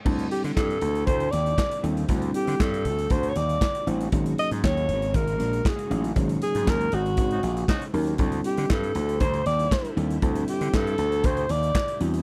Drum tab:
CC |x---------------|----------------|----------------|----------------|
HH |-xxx-xxxxxxx-xxx|xxxx-xxxxxxx-xxx|xxxx-xxxxxxx-xxx|xxxx-xxxxxxx-xox|
CP |----x-------x---|----x-------x---|----x-------x---|----x-------x---|
SD |----o-------o---|----o-------o---|----o-------o---|----o-------o---|
BD |o---o---o---o---|o---o---o---o---|o---o---o---o---|o---o---o---o---|

CC |----------------|----------------|
HH |xxxx-xxxxxxx-xxx|xxxx-xxxxxxx-xxx|
CP |----x-------x---|----x-------x---|
SD |----o-------o---|----o-------o---|
BD |o---o---o---o---|o---o---o---o---|